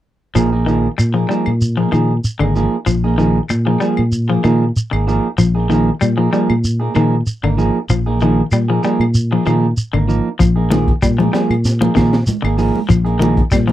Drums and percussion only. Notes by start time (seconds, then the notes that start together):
0.36 claves, shekere
0.68 shekere
0.99 claves, shekere
1.31 shekere
1.46 claves
1.61 shekere
1.92 claves, shekere
2.24 shekere
2.40 claves
2.56 shekere
2.86 claves, shekere
3.19 shekere
3.49 claves, shekere
3.81 shekere
3.97 claves
4.12 shekere
4.44 claves, shekere
4.76 shekere
4.93 claves
5.09 shekere
5.38 claves, shekere
5.71 shekere
6.01 claves, shekere
6.33 shekere
6.50 claves
6.64 shekere
6.95 claves, shekere
7.27 shekere
7.44 claves
7.59 shekere
7.89 claves, shekere
8.20 shekere
8.52 claves, shekere
8.83 shekere
9.01 claves
9.15 shekere
9.46 claves, shekere
9.77 shekere
9.94 claves
10.10 shekere
10.40 kick, closed hi-hat, high conga, claves, shekere
10.71 snare, closed hi-hat, high conga, shekere
10.88 kick, closed hi-hat
11.02 kick, closed hi-hat, high conga, claves, shekere
11.20 closed hi-hat, high conga
11.34 snare, closed hi-hat, shekere
11.51 closed hi-hat, claves
11.65 snare, closed hi-hat, high conga, shekere
11.81 closed hi-hat, high conga
11.96 kick, snare, closed hi-hat, claves, shekere
12.13 snare, closed hi-hat
12.27 closed hi-hat, high conga, shekere
12.45 claves
12.58 open hi-hat, shekere
12.75 high conga
12.90 kick, closed hi-hat, high conga, claves, shekere
13.06 closed hi-hat
13.21 closed hi-hat, high conga, shekere
13.37 kick, closed hi-hat
13.51 kick, snare, closed hi-hat, high conga, claves, shekere
13.69 closed hi-hat